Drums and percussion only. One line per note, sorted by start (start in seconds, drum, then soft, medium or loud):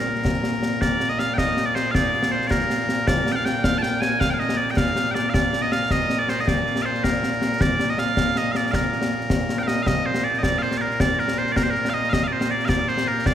0.15 snare soft
0.25 concert bass drum medium
0.25 snare medium
0.34 snare soft
0.44 snare medium
0.53 snare soft
0.63 snare medium
0.82 concert bass drum soft
0.82 snare medium
1.00 snare medium
1.19 snare medium
1.38 concert bass drum soft
1.38 snare medium
1.57 snare medium
1.76 snare medium
1.95 concert bass drum medium
1.95 snare medium
2.14 snare soft
2.23 snare medium
2.42 snare soft
2.51 concert bass drum medium
2.51 snare loud
2.61 snare soft
2.70 snare medium
2.80 snare soft
2.89 snare medium
3.08 concert bass drum medium
3.08 snare loud
3.26 snare medium
3.46 snare medium
3.64 concert bass drum medium
3.64 snare loud
3.83 snare medium
4.02 snare medium
4.21 concert bass drum medium
4.21 snare medium
4.40 snare soft
4.49 snare medium
4.68 snare soft
4.77 concert bass drum medium
4.77 snare loud
4.87 snare soft
4.96 snare medium
5.06 snare soft
5.15 snare medium
5.34 concert bass drum medium
5.34 snare loud
5.53 snare medium
5.72 snare medium
5.91 concert bass drum medium
5.91 snare medium
6.10 snare medium
6.29 snare medium
6.48 concert bass drum medium
6.48 snare medium
6.67 snare soft
6.76 snare medium
6.95 snare soft
7.04 concert bass drum soft
7.04 snare loud
7.14 snare soft
7.23 snare medium
7.33 snare soft
7.42 snare medium
7.61 concert bass drum medium
7.61 snare loud
7.80 snare medium
7.98 snare medium
8.17 concert bass drum soft
8.17 snare medium
8.36 snare medium
8.55 snare medium
8.73 concert bass drum medium
8.73 snare loud
8.92 snare soft
9.02 snare medium
9.21 snare soft
9.30 concert bass drum medium
9.30 snare loud
9.39 snare soft
9.49 snare medium
9.59 snare soft
9.68 snare medium
9.86 concert bass drum medium
9.86 snare medium
10.15 snare medium
10.34 snare soft
10.43 concert bass drum medium
10.43 snare medium
10.62 snare soft
10.71 snare medium
10.91 snare soft
11.00 concert bass drum medium
11.00 snare loud
11.19 snare soft
11.28 snare medium
11.47 snare soft
11.56 concert bass drum medium
11.56 snare medium
11.75 snare soft
11.85 snare medium
12.04 snare soft
12.13 concert bass drum medium
12.13 snare medium
12.41 snare medium
12.60 snare soft
12.69 concert bass drum medium
12.69 snare loud
12.88 snare soft
12.97 snare medium
13.26 concert bass drum medium
13.26 snare medium